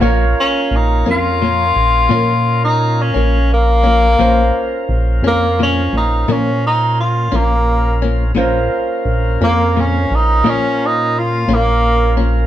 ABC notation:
X:1
M:12/8
L:1/16
Q:3/8=58
K:Bbm
V:1 name="Grand piano"
[FBd]24 | [FBc]24 | [FBc]24 |]
V:2 name="Tonewheel organ"
[B,DFB]24 | [DFB]24 | [B,DFB]24 |]
V:3 name="Tenor saxophone"
z2 D2 E2 F8- F E2 D3 B,4- | B,4 z2 B,2 D2 E2 D2 E2 F2 B,4 z2 | z6 B,2 D2 E2 D2 E2 F2 B,4 z2 |]
V:4 name="Clean electric guitar"
[B,,F,B,D]2 z4 [F,B,D]2 [B,,F,B,D]2 z2 [B,,F,B,D]2 z4 [F,B,D]2 z2 [F,B,D]2 | [B,,F,B,D]2 z4 [F,B,D]2 [B,,F,B,D]2 z2 [B,,F,B,D]2 z4 [F,B,D]2 z2 [F,B,D]2 | [B,,F,B,D]2 z4 [F,B,D]2 [B,,F,B,D]2 z2 [B,,F,B,D]2 z4 [F,B,D]2 z2 [F,B,D]2 |]
V:5 name="Analog synth bass" clef=bass
B,,,2 z2 B,,,2 F,,4 B,,,2 B,,6 B,,,6 | B,,,2 z2 B,,,2 F,,4 B,,,2 B,,6 B,,,6 | B,,,2 z2 B,,,2 F,,4 B,,,2 B,,6 B,,,6 |]